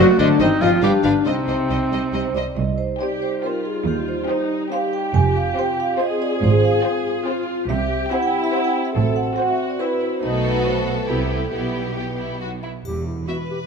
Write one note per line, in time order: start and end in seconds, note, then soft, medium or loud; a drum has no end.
0.00 0.39 A3 medium
0.00 0.17 F#4 loud
0.00 0.18 F#4 medium
0.18 0.26 F#1 medium
0.18 0.39 D3 medium
0.18 0.27 A3 medium
0.18 0.39 D4 loud
0.18 0.28 D4 medium
0.18 0.38 D4 medium
0.18 0.28 C5 medium
0.18 0.26 D#5 medium
0.39 0.47 G1 medium
0.39 0.47 D#3 medium
0.39 0.48 G3 medium
0.39 0.81 C4 medium
0.39 0.61 D#4 medium
0.39 0.60 D#4 medium
0.39 0.63 D#4 medium
0.39 0.48 C5 medium
0.39 0.47 D#5 medium
0.60 0.69 G1 medium
0.60 0.82 F3 medium
0.60 0.69 G3 medium
0.60 0.80 F4 medium
0.60 0.70 F4 loud
0.60 0.83 F4 medium
0.60 0.71 C5 medium
0.60 0.69 D#5 medium
0.82 0.90 G1 medium
0.82 0.90 G3 medium
0.82 1.24 D4 medium
0.82 1.03 G4 loud
0.82 1.03 G4 medium
0.82 0.93 G4 medium
0.82 0.90 B4 medium
0.82 0.90 F5 medium
1.03 1.12 G1 medium
1.03 1.12 D3 medium
1.03 1.12 G3 soft
1.03 1.14 D4 medium
1.03 1.18 D4 medium
1.03 1.24 D4 medium
1.03 1.12 B4 medium
1.03 1.11 F5 medium
1.19 1.26 D4 medium
1.25 1.33 C2 medium
1.25 2.33 C3 medium
1.25 1.34 G3 medium
1.25 2.33 C4 medium
1.25 2.32 C4 medium
1.25 2.36 C4 medium
1.25 2.33 D#4 medium
1.25 1.34 C5 medium
1.25 1.34 D#5 medium
1.47 1.55 C2 medium
1.47 1.55 G3 soft
1.47 1.56 C5 soft
1.47 1.56 D#5 soft
1.69 1.77 C2 medium
1.69 1.77 G3 medium
1.69 1.78 C5 soft
1.69 1.78 D#5 medium
1.91 1.99 C2 medium
1.91 1.99 G3 soft
1.91 2.01 C5 soft
1.91 2.00 D#5 soft
2.13 2.21 C2 medium
2.13 2.21 G3 medium
2.13 2.34 C5 medium
2.13 2.23 C5 soft
2.13 2.21 D#5 soft
2.34 2.42 C2 medium
2.34 2.43 G3 soft
2.34 2.45 C5 soft
2.34 2.55 D5 medium
2.34 2.44 D#5 soft
2.57 2.91 C2 medium
2.57 2.92 C2 medium
2.57 5.11 G3 medium
2.57 5.11 D#4 medium
2.57 2.77 D#5 medium
2.78 2.98 C5 medium
3.00 3.33 C4 medium
3.00 3.40 G4 medium
3.00 3.33 G4 medium
3.00 3.32 C5 medium
3.00 3.20 D5 medium
3.22 3.42 C5 medium
3.43 3.76 C4 soft
3.43 4.28 F4 medium
3.43 3.76 G4 medium
3.43 3.64 A#4 medium
3.43 3.75 C5 medium
3.65 3.85 G#4 medium
3.86 4.20 D#2 medium
3.86 4.07 G4 medium
4.08 4.48 C5 medium
4.29 4.61 C4 medium
4.29 4.72 D#4 medium
4.29 4.61 G4 medium
4.29 4.61 C5 medium
4.71 5.04 C4 medium
4.71 5.97 G4 medium
4.71 5.04 G4 medium
4.71 5.03 C5 medium
4.71 4.92 F5 loud
4.93 5.13 G5 medium
5.14 5.48 F1 medium
5.14 5.48 F2 medium
5.14 7.65 C4 medium
5.14 7.69 F4 medium
5.14 5.34 G#5 loud
5.37 5.56 F5 medium
5.57 5.89 C4 medium
5.57 5.89 F4 medium
5.57 5.89 C5 medium
5.57 5.78 G5 loud
5.80 5.99 F5 loud
5.99 6.32 C4 medium
5.99 6.32 F4 medium
5.99 7.25 G#4 loud
5.99 6.31 C5 medium
5.99 6.20 D#5 loud
6.22 6.41 D5 medium
6.42 6.76 G#1 medium
6.42 6.76 G#2 medium
6.42 6.63 C5 loud
6.65 7.04 F5 medium
6.85 7.16 C4 medium
6.85 7.16 F4 medium
6.85 7.16 C5 medium
7.27 7.58 C4 medium
7.27 7.58 F4 medium
7.27 7.69 F4 medium
7.27 7.59 C5 medium
7.69 8.02 C2 medium
7.69 8.03 C3 loud
7.69 10.19 C4 medium
7.69 8.10 G4 medium
7.69 8.93 G4 medium
7.69 8.08 E5 loud
8.11 8.43 C4 medium
8.11 8.96 E4 medium
8.11 8.43 G4 medium
8.11 8.43 C5 medium
8.11 8.21 F#5 loud
8.23 8.42 G5 medium
8.44 8.53 E5 medium
8.53 8.85 C4 medium
8.53 8.85 G4 medium
8.53 8.85 C5 medium
8.53 8.63 F#5 loud
8.64 8.84 G5 medium
8.85 9.15 E5 medium
8.96 9.29 A1 medium
8.96 9.29 A2 medium
8.96 11.05 F#4 medium
8.96 9.37 A4 medium
9.16 9.35 F#5 medium
9.36 9.69 C4 medium
9.36 9.69 F#4 medium
9.36 9.80 F#4 medium
9.36 9.69 C5 medium
9.36 9.47 F#5 medium
9.48 9.68 E5 medium
9.70 9.80 D5 medium
9.79 10.12 C4 soft
9.79 10.23 E4 medium
9.79 10.12 F#4 soft
9.79 10.00 B4 medium
9.79 10.12 C5 medium
10.01 10.21 C5 medium
10.22 11.05 B1 medium
10.22 11.05 B2 medium
10.22 11.09 A3 medium
10.22 11.05 B3 medium
10.22 10.65 D#4 medium
10.22 11.05 F#4 medium
10.22 11.05 A4 medium
10.22 10.43 D#5 medium
10.44 10.64 B4 medium
10.65 11.09 F#4 medium
10.65 10.86 C5 medium
10.99 11.09 A4 medium
11.08 11.53 C2 medium
11.08 11.52 C3 medium
11.08 12.24 G3 soft
11.08 11.51 B3 soft
11.08 11.51 E4 soft
11.08 12.24 E4 soft
11.08 11.52 E4 medium
11.08 11.51 G4 soft
11.08 11.29 G4 medium
11.31 11.51 A4 medium
11.52 12.62 B1 soft
11.52 12.62 B2 soft
11.52 11.92 B3 soft
11.52 12.61 B3 soft
11.52 11.92 E4 soft
11.52 12.39 G4 soft
11.52 12.37 B4 soft
11.97 12.05 G4 soft
12.19 12.41 E4 soft
12.41 12.51 F#3 soft
12.41 12.63 D#4 soft
12.41 12.50 F#4 soft
12.63 12.71 E4 soft
12.85 13.21 E1 soft
12.85 13.21 E2 medium
12.85 13.05 G4 medium
12.85 triangle soft
13.06 13.27 E4 soft
13.28 13.36 B3 soft
13.28 13.36 E4 soft
13.28 13.38 F#4 medium
13.28 13.67 B4 soft
13.28 13.36 E5 soft
13.50 13.60 G4 medium